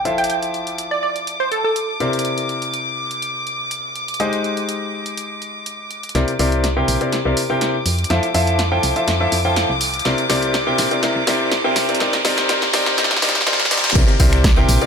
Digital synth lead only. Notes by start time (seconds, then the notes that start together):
Already playing: G5
0.18 G5
0.30 G5
0.91 D5
1.03 D5
1.40 C5
1.52 A4
1.64 A4